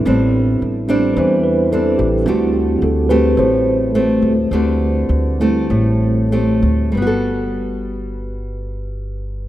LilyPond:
<<
  \new Staff \with { instrumentName = "Tine electric piano" } { \time 4/4 \key g \major \tempo 4 = 104 << { r2 <b' c''>8 b'8 a'8 g'8 | fis'8 g'8 <aes' a'>8 b'8 c''2 | r1 | b'1 | } \\ { <g c' d'>8 r4 <g c' d'>4. r4 | <g c' e'>1 | r4. <g c' e'>8 r2 | r1 | } >> }
  \new Staff \with { instrumentName = "Nylon-string guitar" } { \time 4/4 \key g \major << { <g c' d'>4 r8 <g c' d'>4. <g c' d'>8 r8 | <a c' g'>4. <a c' g'>4. <a c' g'>8 r8 | <a c' g'>4. <a c' g'>4. <a c' g'>4 | <g b fis' a'>1 | } \\ { a,2 e2 | d2 a,2 | d2 a,2 | r1 | } >> }
  \new Staff \with { instrumentName = "Upright bass" } { \clef bass \time 4/4 \key g \major a,,4 a,,4 e,4. a,,8 | d,4 d,4 a,,4. d,8 | d,4 d,4 a,,4. d,8 | g,,1 | }
>>